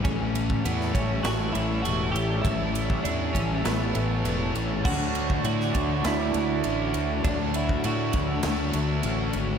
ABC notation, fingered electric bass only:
X:1
M:4/4
L:1/8
Q:1/4=100
K:Amix
V:1 name="Fingered electric bass" clef=bass
A,,,2 E,, A,,, A,,, A,,, E,,, A,,, | A,,,2 E,, A,,, A,,, A,,, E,,, A,,, | D,,2 A,, D,, D,, D,, A,,, D,, | D,,2 A,, D,, D,, D,, A,,, ^G,,, |]